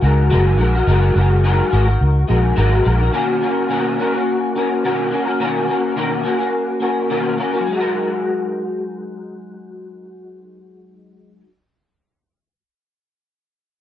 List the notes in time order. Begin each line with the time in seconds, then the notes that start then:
0.02 C#2 G#3 D#4 F#4 A#4
0.30 F#1 F#3 G#3 D#4 F#4 A#4
0.57 A#1 G#3 D#4 F#4 A#4
0.73 D#4 F#4 A#4
0.87 F#1 F#3 G#3 D#4 F#4 A#4
1.15 F#1 G#3 D#4 F#4 A#4
1.44 F#3 G#3 D#4 F#4 A#4
1.71 G#1 G#3 D#4 F#4 A#4
1.85 D#4 F#4 A#4
2.01 C#2
2.28 A#1 G#3 D#4 F#4 A#4
2.56 G#1 F#3 G#3 D#4 F#4 A#4
2.84 A#1 G#3 D#4 F#4 A#4
2.99 D#4 F#4 A#4
3.13 B2 D#3 A#3 C#4 F#4 A#4
3.41 A#3 C#4 F#4 A#4
3.69 B2 D#3 A#3 C#4 F#4 A#4
3.98 A#3 C#4 F#4 A#4
4.13 A#3 C#4 F#4 A#4
4.56 A#3 C#4 F#4 A#4
4.84 B2 D#3 A#3 C#4 F#4 A#4
5.11 A#3 C#4 F#4 A#4
5.25 A#3 C#4 F#4 A#4
5.40 B2 D#3 A#3 C#4 F#4 A#4
5.67 A#3 C#4 F#4 A#4
5.96 B2 D#3 A#3 C#4 F#4 A#4
6.23 A#3 C#4 F#4 A#4
6.38 A#3 C#4 F#4 A#4
6.80 A#3 C#4 F#4 A#4
7.09 B2 D#3 A#3 C#4 F#4 A#4
7.37 A#3 C#4 F#4 A#4
7.51 A#3 C#4 F#4 A#4
7.60 F#3
7.67 G#3
7.72 D#4
7.76 F#4 A#4